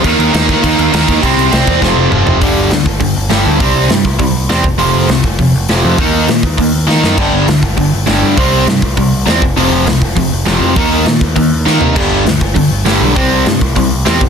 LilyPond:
<<
  \new Staff \with { instrumentName = "Overdriven electric guitar" } { \clef bass \time 4/4 \key g \minor \tempo 4 = 201 <ees bes ees'>4 <ees bes ees'>4 <ees bes ees'>4 <ees bes ees'>4 | <c g c'>4 <c g c'>4 <f, c f>4 <f, c f>4 | <g, d g>4 <g, d>8 r8 <g, d>8 r8 <g, d g>4 | <c g c'>4 <c g>8 r8 <c g>8 r8 <c g c'>8 r8 |
<f, c f>4 <f, c>8 r8 <f, c>8 r8 <f, c f>4 | <ees bes ees'>4 <ees bes>8 r8 <ees bes>8 r8 <ees bes ees'>4 | <g, d g>4 <g, d>8 r8 <g, d>8 r8 <g, d g>4 | <c g c'>4 <c g>8 r8 <c g>8 r8 <c g c'>8 r8 |
<f, c f>4 <f, c>8 r8 <f, c>8 r8 <f, c f>4 | <ees bes ees'>4 <ees bes>8 r8 <ees bes>8 r8 <ees bes ees'>4 | <g, d g>4 <g, d>8 r8 <g, d>8 r8 <g, d g>4 | <c g c'>4 <c g>8 r8 <c g>8 r8 <c g c'>8 r8 | }
  \new Staff \with { instrumentName = "Picked electric bass" } { \clef bass \time 4/4 \key g \minor ees,8 ees,8 ees,4 ees,8 ees,8 ees,8 ees,8 | c,8 c,8 c,8 e,8 f,,8 f,,8 f,,8 f,,8 | g,,8 g,,8 d,8 g,,8 g,,8 g,,8 g,,8 d,8 | c,4 g,8 c,8 c,4 e,8 f,,8 |
f,,8 f,,8 c,8 f,,8 f,,8 f,,8 f,,8 f,8 | ees,4 bes,8 ees,8 ees,4 ees8 fis,8 | g,,8 g,,8 d,8 g,,8 g,,8 g,,8 g,,8 g,8 | c,4 g,8 c,8 c,4 e,8 f,,8 |
f,,8 f,,8 c,8 f,,8 f,,8 f,,8 f,,8 f,8 | ees,4 bes,8 ees,8 ees,4 ees8 c8 | g,,8 g,,8 d,8 g,,8 g,,8 g,,8 g,,8 b,,8 | c,4 g,8 c,8 c,4 e,8 f,,8 | }
  \new DrumStaff \with { instrumentName = "Drums" } \drummode { \time 4/4 <cymc bd>8 cymc8 <cymc sn>8 <cymc bd>8 <cymc bd>8 cymc8 <cymc sn>8 <cymc bd>8 | <cymc bd>8 cymc8 <cymc sn>8 <cymc bd>8 <bd sn>4 toml8 tomfh8 | <hho bd>4 <hho sn>8 bd8 <hho bd>4 <hho sn>4 | <hho bd>4 <hho sn>8 bd8 <hho bd>4 <hho sn>8 bd8 |
hho4 <hho sn>8 bd8 <hho bd>4 <hho sn>4 | <hho bd>4 <hho sn>8 bd8 <hho bd>4 sn8 sn8 | <cymc bd>4 <hho sn>8 bd8 <hho bd>4 <hho sn>4 | <hho bd>4 <hho sn>8 bd8 <hho bd>4 <hho sn>8 bd8 |
hho4 <hho sn>8 bd8 <hho bd>4 <hho sn>4 | <hho bd>4 <hho sn>8 bd8 <hho bd>4 sn8 tomfh8 | <cymc bd>4 <hho sn>8 bd8 <hho bd>4 <hho sn>4 | <hho bd>4 <hho sn>8 bd8 <hho bd>4 <hho sn>8 bd8 | }
>>